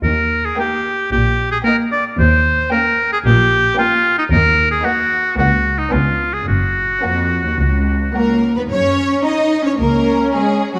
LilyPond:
<<
  \new Staff \with { instrumentName = "Violin section" } { \time 4/4 \key ees \major \tempo 4 = 111 r4 g''4 r4 g''4 | r4 g''4 r4 g''4 | \key fis \major r4 fis''4 fis''4 gis''4 | r4 fis''4 r4 fis''4 |
r4 ais''4 r4 ais''4 | }
  \new Staff \with { instrumentName = "Oboe" } { \time 4/4 \key ees \major bes'8. aes'16 g'4 g'8. aes'16 bes'8 d''8 | c''4 bes'8. aes'16 g'4 f'8. ees'16 | \key fis \major ais'8. gis'16 fis'4 fis'8. dis'16 eis'8. gis'16 | fis'2.~ fis'8 r8 |
r1 | }
  \new Staff \with { instrumentName = "Violin section" } { \time 4/4 \key ees \major << { r1 | r1 | \key fis \major r1 | r2. ais'8. b'16 |
cis''4 dis''8. cis''16 ais'4 gis'8. fis'16 | } \\ { r4 ees'4 r4 ees'4 | r4 des'4 r4 des'4 | r4 dis'4 fis'4 d'4 | r4 cis'4 r4 cis'4 |
r1 | } >> }
  \new Staff \with { instrumentName = "Viola section" } { \time 4/4 \key ees \major r4 bes4 r4 bes4 | r4 bes4 r4 bes4 | \key fis \major r4 ais4 ais4 b4 | r4 ais4 r4 ais4 |
r2 cis'2 | }
  \new Staff \with { instrumentName = "Cello section" } { \clef bass \time 4/4 \key ees \major ees,4 r4 bes,4 r4 | ees,4 r4 bes,4 r4 | \key fis \major dis,4 r4 cis,4 cis,4 | fis,4 eis,8. dis,16 cis,4 <cis, ais>8. <dis, b>16 |
cis'4 dis'8. cis'16 ais4 gis8. fis16 | }
  \new Staff \with { instrumentName = "Double bass section" } { \clef bass \time 4/4 \key ees \major ees,4 r4 bes,,4 r4 | ees,4 r4 bes,,4 r4 | \key fis \major dis,4 r4 cis,4 cis,4 | fis,,4 r4 cis,4 r4 |
fis,4 r4 cis,4 r4 | }
>>